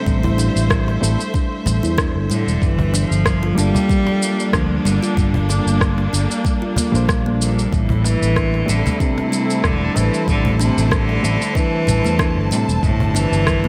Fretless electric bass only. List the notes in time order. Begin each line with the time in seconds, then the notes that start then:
0.06 A1
0.56 A1
1.03 A1
1.66 A1
1.84 E2
2.16 G1
2.30 A2
2.47 E1
2.62 G1
3.11 G1
3.58 G1
4.53 D2
4.85 G1
5.17 G1
5.67 G1
6.13 G1
6.94 A#1
7.72 A1
8.22 A1
8.69 A1
9.64 E1
9.96 A1
10.28 A1
10.78 A1
11.24 A1
11.88 A1
12.05 E2
12.37 G1
12.51 A2
12.69 E1
12.83 G1
13.32 G1